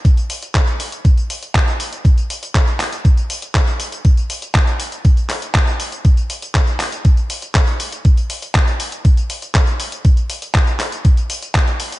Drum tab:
HH |xxoxxxoxxxoxxxox|xxoxxxoxxxoxxxox|xxoxxxoxxxoxxxox|xxoxxxoxxxoxxxox|
TB |xxxxxxxxxxxxxxxx|xxxxxxxxxxxxxxxx|xxxxxxxxxxxxxxxx|xxxxxxxxxxxxxxxx|
CP |----x-------x---|----x-x-----x---|----x-----x-x---|----x-x-----x---|
BD |o---o---o---o---|o---o---o---o---|o---o---o---o---|o---o---o---o---|

HH |xxoxxxoxxxoxxxox|xxoxxxoxxxoxxxox|
TB |xxxxxxxxxxxxxxxx|xxxxxxxxxxxxxxxx|
CP |----x-------x---|----x-x-----x---|
BD |o---o---o---o---|o---o---o---o---|